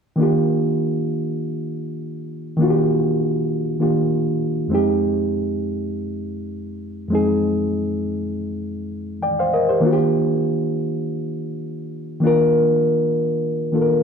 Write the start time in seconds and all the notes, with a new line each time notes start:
0.16 D#3 A#3 D4
0.21 F4 G4
2.57 D#3 A#3 D4
2.62 F4 F#4
2.70 G4
3.79 D#3 A#3 D4 F4 G4
4.68 F2 G#3 C4
4.73 D#4 G4
7.08 F2 G#3 C4
7.13 D#4 G#4
9.23 D5 G5
9.39 C5 F5
9.53 A#4 D#5
9.69 G4 C5
9.80 D#3 A#3 D4
9.85 F4 F#4
9.93 G4
12.20 D#3 A#3 D4
12.25 F4 A#4
13.72 D#3 A#3 D4 F4 A4
13.82 A#4